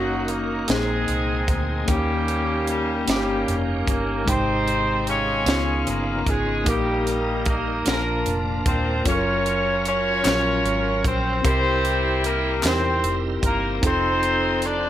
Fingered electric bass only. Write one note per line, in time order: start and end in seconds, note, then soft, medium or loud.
0.00 0.65 F#1 medium
0.69 1.05 A#1 medium
1.08 1.45 C2 medium
1.48 1.85 D2 medium
1.88 3.04 D#2 medium
3.08 3.44 G1 medium
3.48 3.84 F1 medium
3.88 4.24 G1 medium
4.28 5.43 G#1 medium
5.46 5.83 C#2 medium
5.87 6.24 G1 medium
6.27 6.63 G#1 medium
6.67 7.82 A#1 medium
7.87 8.23 A#1 medium
8.26 8.62 F1 medium
8.66 9.02 D#1 medium
9.06 10.21 F#1 medium
10.25 10.62 A#1 medium
10.65 11.01 G#1 medium
11.05 11.41 A#1 medium
11.45 12.60 C2 medium
12.64 13.00 E2 medium
13.03 13.40 F1 medium
13.43 13.80 G1 medium
13.83 14.89 F1 medium